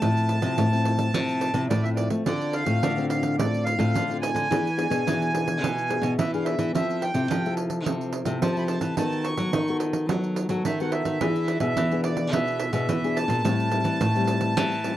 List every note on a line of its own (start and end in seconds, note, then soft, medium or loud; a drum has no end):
0.00 0.55 A2 medium
0.00 0.38 A2 medium
0.00 0.40 F3 medium
0.00 0.40 C4 medium
0.00 0.40 E4 medium
0.00 1.66 A5 loud
0.00 pandeiro medium
0.17 pandeiro soft
0.29 pandeiro medium
0.42 0.55 C3 medium
0.42 0.67 F3 medium
0.42 0.67 C4 medium
0.42 0.67 E4 medium
0.42 pandeiro medium
0.58 1.11 A2 medium
0.58 1.14 A2 medium
0.58 pandeiro medium
0.72 1.10 F3 medium
0.72 1.10 C4 medium
0.72 1.10 E4 medium
0.72 pandeiro soft
0.85 pandeiro medium
0.99 pandeiro medium
1.14 1.67 A2 medium
1.14 1.50 C3 medium
1.14 1.52 F3 medium
1.14 1.52 C4 medium
1.14 1.52 E4 medium
1.14 pandeiro medium
1.29 pandeiro soft
1.41 pandeiro medium
1.53 1.67 C3 loud
1.53 1.79 F3 medium
1.53 1.79 C4 medium
1.53 1.79 E4 medium
1.53 pandeiro medium
1.70 2.23 A2 medium
1.70 2.06 A2 medium
1.70 1.85 D5 medium
1.70 pandeiro medium
1.83 2.22 F3 medium
1.83 2.22 C4 medium
1.83 2.23 E4 medium
1.83 1.90 E5 medium
1.83 pandeiro soft
1.95 2.09 D5 medium
1.95 pandeiro medium
2.10 2.23 A3 medium
2.10 pandeiro medium
2.26 2.80 D3 medium
2.26 2.63 D3 loud
2.26 2.64 C4 medium
2.26 2.64 F4 medium
2.26 2.64 A4 medium
2.26 2.55 D5 loud
2.26 pandeiro medium
2.41 pandeiro soft
2.53 3.06 F5 loud
2.53 pandeiro medium
2.66 2.79 A2 medium
2.66 2.91 C4 medium
2.66 2.91 F4 medium
2.66 2.91 A4 medium
2.66 pandeiro medium
2.82 3.36 A2 medium
2.82 3.38 D3 loud
2.82 pandeiro medium
2.97 3.35 C4 medium
2.97 3.35 F4 medium
2.97 3.35 A4 medium
2.97 pandeiro soft
3.09 3.36 F5 medium
3.09 pandeiro medium
3.23 pandeiro medium
3.38 3.74 A2 loud
3.38 3.92 D3 medium
3.38 3.76 C4 medium
3.38 3.76 F4 soft
3.38 3.77 A4 medium
3.38 3.64 D5 loud
3.38 pandeiro medium
3.54 pandeiro soft
3.64 4.17 F5 loud
3.64 pandeiro medium
3.78 3.91 A2 medium
3.78 4.03 C4 medium
3.78 4.03 F4 medium
3.78 4.03 A4 medium
3.78 pandeiro medium
3.94 4.48 A2 medium
3.94 4.30 D3 loud
3.94 pandeiro medium
4.09 4.47 C4 medium
4.09 4.47 F4 medium
4.09 4.47 A4 medium
4.09 pandeiro soft
4.21 6.14 G#5 loud
4.21 pandeiro medium
4.34 4.47 D3 medium
4.34 pandeiro medium
4.50 5.03 E3 medium
4.50 4.86 E3 loud
4.50 4.67 B3 medium
4.50 4.67 D4 medium
4.50 4.67 G#4 medium
4.50 pandeiro medium
4.67 pandeiro soft
4.77 4.86 B3 medium
4.77 4.87 D4 medium
4.77 4.87 G#4 medium
4.77 pandeiro medium
4.90 5.03 B2 medium
4.90 5.29 B3 medium
4.90 5.29 D4 medium
4.90 5.29 G#4 medium
4.90 pandeiro medium
5.07 5.60 B2 medium
5.07 5.62 E3 medium
5.07 pandeiro medium
5.22 pandeiro soft
5.33 5.70 B3 soft
5.33 5.70 D4 soft
5.33 5.70 G#4 medium
5.33 pandeiro medium
5.48 pandeiro medium
5.62 5.98 B2 medium
5.62 6.16 E3 medium
5.62 pandeiro medium
5.78 pandeiro soft
5.89 6.16 B3 medium
5.89 6.16 D4 medium
5.89 6.17 G#4 medium
5.89 pandeiro medium
6.02 6.15 B2 loud
6.02 pandeiro medium
6.18 6.72 B2 medium
6.18 6.54 E3 medium
6.18 6.31 E5 medium
6.18 pandeiro medium
6.33 6.70 B3 medium
6.33 6.71 D4 medium
6.33 6.71 G#4 medium
6.33 6.46 F5 medium
6.33 pandeiro soft
6.45 6.72 E5 medium
6.45 pandeiro medium
6.59 6.71 E3 medium
6.59 pandeiro medium
6.75 7.10 F3 medium
6.75 7.28 F3 medium
6.75 7.01 C4 medium
6.75 7.01 E4 medium
6.75 7.01 A4 medium
6.75 7.04 E5 medium
6.75 pandeiro medium
6.90 pandeiro soft
7.02 7.54 G5 medium
7.02 pandeiro medium
7.14 7.27 C3 medium
7.14 7.39 C4 medium
7.14 7.39 E4 medium
7.14 7.39 A4 medium
7.14 pandeiro medium
7.30 7.84 C3 medium
7.30 7.86 F3 medium
7.30 pandeiro medium
7.46 7.82 C4 medium
7.46 7.83 E4 medium
7.46 7.83 A4 medium
7.46 pandeiro soft
7.57 pandeiro medium
7.70 pandeiro medium
7.86 8.22 C3 medium
7.86 8.39 F3 medium
7.86 8.13 C4 soft
7.86 8.13 E4 medium
7.86 8.13 A4 medium
7.86 pandeiro medium
8.01 pandeiro soft
8.13 pandeiro medium
8.25 8.39 C3 medium
8.25 8.50 C4 medium
8.25 8.51 E4 medium
8.25 8.51 A4 medium
8.25 pandeiro medium
8.41 8.95 C3 medium
8.41 8.78 F3 loud
8.41 8.56 A5 medium
8.41 pandeiro medium
8.56 8.94 C4 medium
8.56 8.94 E4 medium
8.56 8.94 A4 medium
8.56 8.64 B5 medium
8.56 pandeiro soft
8.68 8.96 A5 medium
8.68 pandeiro medium
8.81 8.95 E3 medium
8.81 pandeiro medium
8.97 9.51 D#3 medium
8.97 9.34 D#3 loud
8.97 9.35 B3 medium
8.97 9.35 F#4 medium
8.97 9.36 A4 medium
8.97 9.27 A5 medium
8.97 pandeiro medium
9.12 pandeiro soft
9.24 9.77 C#6 loud
9.24 pandeiro medium
9.37 9.51 F#3 medium
9.37 9.62 B3 medium
9.37 9.62 F#4 medium
9.37 9.63 A4 medium
9.37 pandeiro medium
9.53 10.10 D#3 medium
9.53 10.07 D#3 medium
9.53 pandeiro medium
9.68 10.06 B3 medium
9.68 10.06 F#4 medium
9.68 10.06 A4 medium
9.68 pandeiro soft
9.80 pandeiro medium
9.93 pandeiro medium
10.09 10.63 D#3 medium
10.09 10.46 F#3 medium
10.09 10.47 B3 soft
10.09 10.47 F#4 medium
10.09 10.48 A4 medium
10.09 pandeiro medium
10.24 pandeiro soft
10.36 pandeiro medium
10.49 10.62 F#3 medium
10.49 10.74 B3 medium
10.49 10.75 F#4 medium
10.49 10.75 A4 medium
10.49 pandeiro medium
10.65 11.01 D#3 loud
10.65 11.19 D#3 medium
10.65 10.79 E5 medium
10.65 pandeiro medium
10.80 11.18 B3 medium
10.80 11.18 F#4 medium
10.80 11.18 A4 medium
10.80 10.93 F#5 medium
10.80 pandeiro soft
10.92 11.59 E5 medium
10.92 pandeiro medium
11.05 11.18 D#3 medium
11.05 pandeiro medium
11.21 11.57 E3 loud
11.21 11.75 E3 medium
11.21 11.59 B3 medium
11.21 11.60 D4 medium
11.21 11.60 G#4 medium
11.21 pandeiro medium
11.36 pandeiro soft
11.48 pandeiro medium
11.60 11.74 B2 medium
11.60 11.86 B3 medium
11.60 11.86 D4 medium
11.60 11.86 G#4 medium
11.60 12.01 E5 medium
11.60 pandeiro medium
11.77 12.30 B2 medium
11.77 12.33 E3 loud
11.77 pandeiro medium
11.91 12.29 B3 medium
11.91 12.29 D4 medium
11.91 12.29 G#4 medium
11.91 pandeiro soft
12.04 12.31 D5 medium
12.04 pandeiro medium
12.17 pandeiro medium
12.33 12.69 B2 medium
12.33 12.86 E3 medium
12.33 12.59 B3 soft
12.33 12.60 D4 medium
12.33 12.60 G#4 medium
12.33 12.72 E5 loud
12.33 pandeiro medium
12.48 pandeiro soft
12.60 pandeiro medium
12.72 12.86 B2 loud
12.72 12.98 B3 medium
12.72 12.98 D4 medium
12.72 12.98 G#4 medium
12.72 13.18 E5 medium
12.72 pandeiro medium
12.89 13.42 B2 medium
12.89 13.25 E3 loud
12.89 pandeiro medium
13.04 13.41 B3 medium
13.04 13.41 D4 medium
13.04 13.42 G#4 medium
13.04 pandeiro soft
13.16 14.97 A5 loud
13.16 pandeiro medium
13.28 13.41 A#2 medium
13.28 pandeiro medium
13.45 13.81 A2 loud
13.45 13.98 A2 medium
13.45 13.69 G3 medium
13.45 13.69 C4 medium
13.45 13.69 E4 medium
13.45 pandeiro medium
13.60 pandeiro soft
13.71 13.99 G3 medium
13.71 13.99 C4 medium
13.71 14.00 E4 medium
13.71 pandeiro medium
13.84 13.97 E3 medium
13.84 pandeiro medium
14.01 14.57 A2 medium
14.01 pandeiro medium
14.15 14.53 G3 medium
14.15 14.53 C4 medium
14.15 14.53 E4 medium
14.15 pandeiro soft
14.27 pandeiro medium
14.41 pandeiro medium
14.57 14.97 A2 medium
14.57 14.93 E3 medium
14.57 14.74 G3 medium
14.57 14.74 C4 medium
14.57 14.74 E4 medium
14.57 pandeiro medium
14.72 pandeiro soft
14.84 14.97 G3 medium
14.84 14.97 C4 medium
14.84 14.97 E4 medium
14.84 pandeiro medium